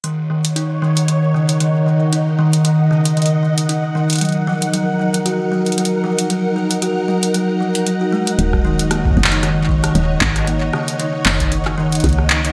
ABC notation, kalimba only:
X:1
M:4/4
L:1/16
Q:"Swing 16ths" 1/4=115
K:Ebm
V:1 name="Kalimba" clef=bass
E, z E, z E z E, z E, z D, z E, z E, z | E z E, z E, z D, z E, z E, z E z E, z | G, z F, z G, z G, z G z G, z G, z F, z | G, z G, z G z G, z G, z F, z G, G A, z |
E z E, z B, z D, z E, z E, z E z E, z | B, z D, z E, z E, z E z E, z B, z D, z |]